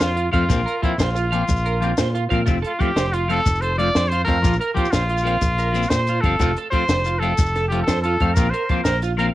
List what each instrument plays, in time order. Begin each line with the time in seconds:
0.00 fingered electric bass F2, trumpet F4, snare, closed hi-hat, shekere
0.17 clean electric guitar F4, closed hi-hat
0.32 fingered electric bass F2, clean electric guitar F3 A3 C4 F5, trumpet F4, kick, closed hi-hat
0.49 fingered electric bass A#1, clean electric guitar F3 A#3 C4, muted clean electric guitar stroke, kick, closed hi-hat, shekere
0.66 clean electric guitar A#4, closed hi-hat
0.82 clean electric guitar F3 A#3 C4 F4, trumpet E4, kick, closed hi-hat
0.98 fingered electric bass A#1, trumpet F4, clean electric guitar C5, snare, closed hi-hat, shekere
1.16 clean electric guitar F4, closed hi-hat, shekere
1.32 clean electric guitar F3 A#3 C4 F5, closed hi-hat
1.48 fingered electric bass A#1, kick, closed hi-hat, shekere
1.56 shekere
1.66 clean electric guitar A#4, closed hi-hat
1.81 clean electric guitar F3 A#3 C4 F4, closed hi-hat
1.98 fingered electric bass A#2, clean electric guitar C5, snare, closed hi-hat, shekere
2.15 clean electric guitar F4, closed hi-hat
2.30 fingered electric bass A#2, clean electric guitar F3 A#3 C4 F5, kick, closed hi-hat
2.46 fingered electric bass F1, clean electric guitar F3 A3 C4 F4, kick, closed hi-hat, shekere
2.62 trumpet F4, clean electric guitar A4, closed hi-hat
2.79 clean electric guitar F3 A3 C4 F4, trumpet G4, kick, closed hi-hat
2.96 fingered electric bass F1, clean electric guitar C5, snare, closed hi-hat, shekere
3.13 trumpet F4, clean electric guitar F4, closed hi-hat
3.28 clean electric guitar F3 A3 C4 F5, trumpet A4, closed hi-hat
3.46 fingered electric bass F1, kick, closed hi-hat, shekere
3.55 shekere
3.61 clean electric guitar A4, trumpet C5, closed hi-hat
3.78 clean electric guitar F3 A3 C4 F4, trumpet D5, closed hi-hat
3.95 fingered electric bass F2, clean electric guitar C5, snare, closed hi-hat, shekere
4.08 clean electric guitar F4, trumpet C5, closed hi-hat
4.25 fingered electric bass F2, clean electric guitar F3 A3 C4, trumpet A#4, kick, closed hi-hat
4.29 clean electric guitar F5
4.42 fingered electric bass A#1, clean electric guitar F3 A#3 F4, muted clean electric guitar stroke, kick, closed hi-hat, shekere
4.53 shekere
4.60 trumpet A#4, clean electric guitar A#4, closed hi-hat
4.74 clean electric guitar F3 A#3 C4 F4, trumpet G4, kick, closed hi-hat
4.85 shekere
4.91 fingered electric bass A#1, trumpet F4, snare, closed hi-hat, shekere
4.95 clean electric guitar C5
5.09 clean electric guitar F4, closed hi-hat
5.17 shekere
5.23 clean electric guitar F3 A#3 C4 F5, closed hi-hat
5.41 fingered electric bass A#1, kick, closed hi-hat, shekere
5.58 clean electric guitar A#4, closed hi-hat, shekere
5.73 clean electric guitar F3 A#3 C4, closed hi-hat, shekere
5.82 shekere
5.89 fingered electric bass A#2, trumpet C5, clean electric guitar C5, snare, closed hi-hat, shekere
6.07 clean electric guitar F4, closed hi-hat, shekere
6.21 fingered electric bass G1, clean electric guitar F3, trumpet A4, kick, closed hi-hat
6.25 clean electric guitar C4 F5
6.39 fingered electric bass F1, clean electric guitar F3 A3 C4 F4, kick, closed hi-hat, shekere
6.56 clean electric guitar A4, closed hi-hat
6.70 clean electric guitar F3 A3 C4 F4, trumpet C5, kick, closed hi-hat
6.88 fingered electric bass F1, clean electric guitar C5, snare, closed hi-hat, shekere
7.04 clean electric guitar F4, closed hi-hat, shekere
7.19 clean electric guitar F3 A3 F5, trumpet A4, closed hi-hat
7.23 clean electric guitar C4
7.38 fingered electric bass F1, kick, closed hi-hat, shekere
7.46 shekere
7.55 clean electric guitar A4, snare, closed hi-hat
7.68 clean electric guitar F3, trumpet G4, closed hi-hat
7.72 clean electric guitar A3 C4 F4
7.82 trumpet A4
7.87 fingered electric bass F2, clean electric guitar C5, snare, closed hi-hat, shekere
8.02 clean electric guitar F4, trumpet A4, closed hi-hat
8.20 fingered electric bass F2, clean electric guitar F3 A3 C4 F5, kick, closed hi-hat
8.34 fingered electric bass A#1, clean electric guitar F3 A#3 F4, trumpet A#4, kick, closed hi-hat, shekere
8.39 clean electric guitar C4
8.50 clean electric guitar A#4, trumpet C5, closed hi-hat
8.69 clean electric guitar F3 A#3 C4 F4, kick, closed hi-hat
8.84 fingered electric bass A#1, trumpet A#4, clean electric guitar C5, snare, closed hi-hat, shekere
9.02 clean electric guitar F4, closed hi-hat, shekere
9.17 clean electric guitar F3 A#3 C4 F5, trumpet A#4, closed hi-hat